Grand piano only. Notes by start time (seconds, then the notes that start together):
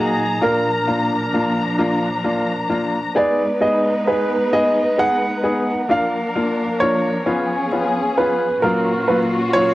Already playing: G#4
0.43 A#4
3.17 D5
3.62 D#5
4.07 B4
4.53 D#5
4.99 F#5
5.91 F5
6.80 C#5
8.18 B4
8.62 A#4
9.08 B4
9.53 C#5